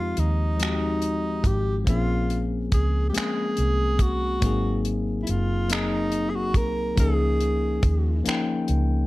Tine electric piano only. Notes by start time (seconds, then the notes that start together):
Already playing: F3 G#3 C4 D#4 G4
0.57 F3 G#3 C4 D#4
0.63 F#4
0.69 G4
1.84 F3 A#3 C4 C#4
1.90 G#4
3.12 G#3 A#3 C4 C#4
3.18 G#4
4.40 F#3 A#3 C4
4.44 D#4 G#4
5.68 F#3 A#3 C4 D#4
5.73 G#4
6.96 F3 A#3 C#4 D#4
7.01 G#4
8.23 F3 A#3 C#4
8.27 D#4 G5